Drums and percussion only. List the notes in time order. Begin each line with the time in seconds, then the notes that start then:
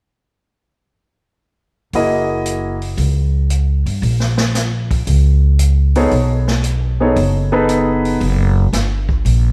1.93 open hi-hat
2.45 closed hi-hat
2.82 open hi-hat
2.98 open hi-hat
3.50 closed hi-hat
3.86 open hi-hat
4.03 open hi-hat
4.20 snare
4.37 snare
4.55 snare, closed hi-hat
4.91 kick, open hi-hat
5.07 open hi-hat
5.59 closed hi-hat
5.95 open hi-hat
6.11 open hi-hat
6.48 snare
6.64 closed hi-hat
7.16 open hi-hat
7.69 closed hi-hat
8.05 open hi-hat
8.21 open hi-hat
8.73 snare, closed hi-hat
9.09 kick
9.26 open hi-hat